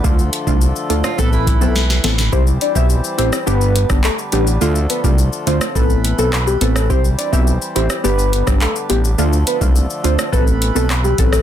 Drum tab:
HH |--x---x---x---x-|--x---x---x---x-|--x---x---x---x-|--x---x---x---x-|
SH |xxxxxxxxxxxxxxxx|xxxxxxxxxxxxxxxx|xxxxxxxxxxxxxxxx|xxxxxxxxxxxxxxxx|
CP |----------------|------------x---|------------x---|------------x---|
SD |-------r----oooo|-------r---r----|-------r----r--r|-------r---r----|
BD |o--o----o-o-----|o--o-------o----|---o----o-------|o--o-------o----|

HH |--x---x---x---x-|
SH |xxxxxxxxxxxxxxxx|
CP |------------x---|
SD |-------r----r--r|
BD |---o----o-----o-|